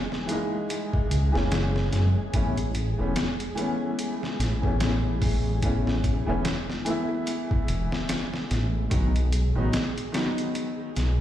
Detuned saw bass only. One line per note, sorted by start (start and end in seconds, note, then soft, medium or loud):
1.11 1.32 C#2 medium
1.36 1.90 F#1 loud
1.93 2.14 F#2 medium
2.34 2.94 A1 medium
3.00 3.15 E1 medium
4.40 4.77 A1 medium
4.80 5.82 A1 loud
5.87 6.22 A1 medium
6.28 6.43 E1 medium
7.69 7.90 E1 medium
8.51 8.88 A1 medium
8.92 9.52 B1 medium
9.57 9.72 A1 medium
10.97 11.21 B1 medium